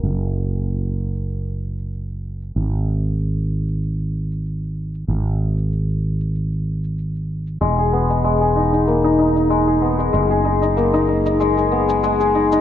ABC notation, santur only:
X:1
M:4/4
L:1/16
Q:"Swing 16ths" 1/4=95
K:Elyd
V:1 name="Santur"
z16 | z16 | z16 | G, G B, G, G, G D D A, D D D G, G B, G, |
G, G D D A, D D D G, G B, G, G, G D D |]